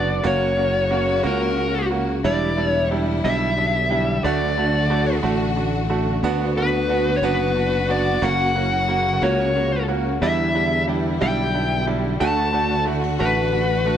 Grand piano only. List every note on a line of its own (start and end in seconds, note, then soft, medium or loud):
0.00 0.17 B3 medium
0.00 0.17 D4 medium
0.00 0.17 F#4 medium
0.24 0.50 A#3 loud
0.24 0.50 C#4 medium
0.24 0.50 F#4 loud
0.57 0.83 A#3 medium
0.57 0.83 C#4 medium
0.57 0.83 F#4 medium
0.91 1.17 A#3 medium
0.91 1.17 C#4 medium
0.91 1.17 F#4 medium
1.23 1.50 A#3 medium
1.23 1.50 C#4 medium
1.23 1.50 F#4 medium
1.57 1.83 C#4 medium
1.57 1.83 F#4 medium
1.91 2.17 A#3 medium
1.91 2.17 C#4 medium
1.91 2.17 F#4 medium
2.24 2.50 G3 medium
2.24 2.50 D4 medium
2.24 2.50 E4 loud
2.57 2.83 G3 medium
2.57 2.83 D4 medium
2.57 2.83 E4 medium
2.91 3.17 G3 medium
2.91 3.17 D4 medium
2.91 3.17 E4 medium
3.24 3.50 G3 medium
3.24 3.50 D4 medium
3.24 3.50 E4 loud
3.57 3.83 D4 medium
3.57 3.83 E4 medium
3.91 4.16 G3 medium
3.91 4.17 D4 medium
3.91 4.17 E4 medium
4.24 4.50 A3 loud
4.24 4.50 D4 medium
4.24 4.50 F#4 loud
4.58 4.83 A3 medium
4.58 4.83 D4 medium
4.58 4.83 F#4 medium
4.90 5.16 A3 medium
4.90 5.16 D4 medium
4.90 5.16 F#4 medium
5.23 5.49 A3 medium
5.23 5.49 D4 medium
5.23 5.49 F#4 medium
5.56 5.82 D4 medium
5.56 5.83 F#4 medium
5.90 6.16 A3 medium
5.90 6.16 D4 medium
5.90 6.16 F#4 medium
6.23 6.49 B3 loud
6.23 6.49 D4 loud
6.23 6.49 F#4 loud
6.57 6.82 B3 medium
6.57 6.82 D4 medium
6.57 6.82 F#4 medium
6.89 7.15 B3 medium
6.89 7.15 D4 medium
6.89 7.15 F#4 medium
7.23 7.48 B3 loud
7.23 7.49 D4 medium
7.23 7.49 F#4 loud
7.56 7.82 D4 medium
7.56 7.82 F#4 medium
7.89 8.15 B3 medium
7.89 8.15 D4 medium
7.89 8.15 F#4 medium
8.22 8.48 A#3 loud
8.22 8.48 C#4 medium
8.22 8.48 F#4 loud
8.55 8.81 A#3 medium
8.55 8.81 C#4 medium
8.55 8.81 F#4 medium
8.88 9.14 A#3 medium
8.88 9.15 C#4 medium
8.88 9.15 F#4 medium
9.22 9.48 A#3 loud
9.22 9.48 C#4 medium
9.22 9.48 F#4 medium
9.56 9.81 C#4 medium
9.56 9.82 F#4 medium
9.88 10.14 A#3 medium
9.88 10.14 C#4 medium
9.88 10.14 F#4 medium
10.22 10.48 G3 medium
10.22 10.48 D4 medium
10.22 10.48 E4 loud
10.55 10.81 G3 medium
10.55 10.81 D4 medium
10.55 10.81 E4 medium
10.87 11.14 G3 medium
10.87 11.14 D4 medium
10.87 11.14 E4 medium
11.21 11.47 G3 loud
11.21 11.47 D4 medium
11.21 11.47 E4 loud
11.54 11.80 D4 medium
11.54 11.81 E4 medium
11.87 12.13 G3 medium
11.87 12.13 D4 medium
11.87 12.13 E4 medium
12.20 12.46 A3 loud
12.20 12.47 D4 medium
12.20 12.47 F#4 loud
12.53 12.79 A3 medium
12.53 12.79 D4 medium
12.53 12.80 F#4 medium
12.85 13.12 A3 medium
12.85 13.12 D4 medium
12.85 13.12 F#4 medium
13.19 13.46 A3 medium
13.19 13.46 D4 medium
13.19 13.46 F#4 loud
13.52 13.79 D4 medium
13.52 13.79 F#4 medium
13.85 13.97 A3 medium
13.85 13.97 D4 medium
13.85 13.97 F#4 medium